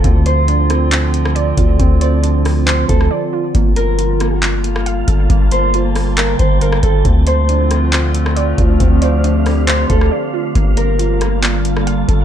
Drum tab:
HH |x-x-x-x-x-x-x-x-|x-x-x-o-x-x-----|x-x-x-x-x-x-x-x-|x-x-x-o-x-x-x-x-|
CP |--------x-------|--------x-------|--------x-------|--------x-------|
SD |------r----r----|------r----r----|------r----r----|------r------r--|
BD |o-------------o-|o---------o-----|o-------------o-|o---------o---o-|

HH |x-x-x-x-x-x-x-x-|x-x-x-o-x-x-----|x-x-x-x-x-x-x-x-|
CP |--------x-------|--------x-------|--------x-------|
SD |------r----r----|------r----r----|------r----r----|
BD |o-------------o-|o---------o-----|o-------------o-|